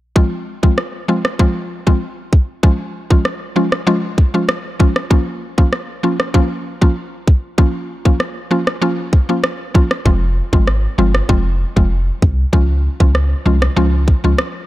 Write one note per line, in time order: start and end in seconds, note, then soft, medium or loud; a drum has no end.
0.16 0.59 F3 medium
0.16 0.59 G#3 medium
0.16 0.59 C4 medium
0.16 0.59 F4 loud
0.16 kick loud
0.63 0.75 F3 medium
0.63 0.75 G#3 medium
0.63 0.75 C4 medium
0.63 0.75 F4 medium
0.63 kick medium
0.78 cross-stick medium
1.08 1.22 F3 medium
1.08 1.22 G#3 medium
1.08 1.22 C4 medium
1.08 1.22 F4 medium
1.25 cross-stick medium
1.39 1.83 F3 medium
1.39 1.83 G#3 medium
1.39 1.83 C4 medium
1.39 1.83 F4 loud
1.39 kick medium
1.87 1.99 F3 medium
1.87 1.99 G#3 medium
1.87 1.99 C4 medium
1.87 1.99 F4 medium
1.87 kick medium
2.33 kick medium
2.63 3.07 F3 medium
2.63 3.07 G#3 medium
2.63 3.07 C#4 medium
2.63 3.07 F4 loud
2.63 kick loud
3.10 3.22 F3 medium
3.10 3.23 G#3 medium
3.10 3.23 C#4 medium
3.10 3.23 F4 medium
3.10 kick medium
3.25 cross-stick medium
3.56 3.69 F3 medium
3.56 3.70 G#3 medium
3.56 3.70 C#4 medium
3.56 3.70 F4 medium
3.72 cross-stick medium
3.87 4.30 F3 medium
3.87 4.30 G#3 medium
3.87 4.30 C#4 medium
3.87 4.31 F4 loud
4.18 kick medium
4.34 4.46 F3 medium
4.34 4.46 G#3 medium
4.34 4.46 C#4 medium
4.34 4.46 F4 medium
4.49 cross-stick loud
4.80 4.93 F3 medium
4.80 4.93 G#3 medium
4.80 4.93 C#4 medium
4.80 4.93 F4 medium
4.80 kick medium
4.96 cross-stick medium
5.10 5.54 F3 medium
5.10 5.54 A#3 medium
5.10 5.54 C#4 medium
5.10 5.54 F4 loud
5.10 kick loud
5.58 5.70 F3 medium
5.58 5.70 A#3 medium
5.58 5.70 C#4 medium
5.58 5.70 F4 medium
5.58 kick medium
5.73 cross-stick medium
6.03 6.17 F3 medium
6.03 6.17 A#3 medium
6.03 6.17 C#4 medium
6.03 6.17 F4 medium
6.20 cross-stick medium
6.34 6.78 F3 loud
6.34 6.78 A#3 medium
6.34 6.78 C#4 medium
6.34 6.78 F4 loud
6.34 kick medium
6.81 6.94 F3 medium
6.81 6.94 A#3 medium
6.81 6.94 C#4 medium
6.81 6.94 F4 medium
6.81 kick medium
7.28 kick medium
7.58 8.01 F3 medium
7.58 8.02 A#3 medium
7.58 8.02 C#4 medium
7.58 8.02 F4 loud
7.58 kick loud
8.05 8.17 F3 medium
8.05 8.17 A#3 medium
8.05 8.17 C#4 medium
8.05 8.18 F4 medium
8.05 kick medium
8.20 cross-stick medium
8.51 8.64 F3 medium
8.51 8.64 A#3 medium
8.51 8.65 C#4 medium
8.51 8.65 F4 medium
8.67 cross-stick medium
8.82 9.25 F3 medium
8.82 9.25 A#3 medium
8.82 9.25 C#4 medium
8.82 9.25 F4 loud
9.13 kick medium
9.29 9.41 F3 medium
9.29 9.41 A#3 medium
9.29 9.41 C#4 medium
9.29 9.41 F4 medium
9.44 cross-stick loud
9.74 9.88 F3 medium
9.74 9.88 A#3 medium
9.74 9.88 C#4 medium
9.74 9.88 F4 medium
9.74 kick medium
9.91 cross-stick medium
10.05 10.41 F1 loud
10.05 10.49 F3 medium
10.05 10.49 G#3 medium
10.05 10.49 C4 medium
10.05 10.49 F4 loud
10.05 kick loud
10.53 10.87 G#1 medium
10.53 10.65 F3 medium
10.53 10.65 G#3 medium
10.53 10.65 C4 medium
10.53 10.65 F4 medium
10.53 kick medium
10.68 cross-stick medium
10.98 11.22 G1 medium
10.98 11.12 F3 medium
10.98 11.12 G#3 medium
10.98 11.12 C4 medium
10.98 11.12 F4 medium
11.15 cross-stick medium
11.29 11.65 F1 loud
11.29 11.73 F3 medium
11.29 11.73 G#3 medium
11.29 11.73 C4 medium
11.29 11.73 F4 loud
11.29 kick medium
11.76 12.11 F1 medium
11.76 11.88 F3 medium
11.76 11.89 G#3 medium
11.76 11.89 C4 medium
11.76 11.89 F4 medium
11.76 kick medium
12.22 12.46 C2 loud
12.22 kick medium
12.53 12.89 C#2 loud
12.53 12.96 F3 medium
12.53 12.96 G#3 medium
12.53 12.96 C#4 medium
12.53 12.97 F4 loud
12.53 kick loud
13.00 13.35 C#2 medium
13.00 13.12 F3 medium
13.00 13.12 G#3 medium
13.00 13.12 C#4 medium
13.00 13.12 F4 medium
13.00 kick medium
13.15 cross-stick medium
13.46 13.69 C2 loud
13.46 13.59 F3 medium
13.46 13.59 G#3 medium
13.46 13.59 C#4 medium
13.46 13.59 F4 medium
13.62 cross-stick loud
13.77 14.13 C#2 loud
13.77 14.20 F3 medium
13.77 14.20 G#3 medium
13.77 14.20 C#4 medium
13.77 14.20 F4 loud
14.08 kick medium
14.24 14.35 C#2 medium
14.24 14.36 F3 medium
14.24 14.36 G#3 medium
14.24 14.36 C#4 medium
14.24 14.36 F4 medium
14.38 cross-stick loud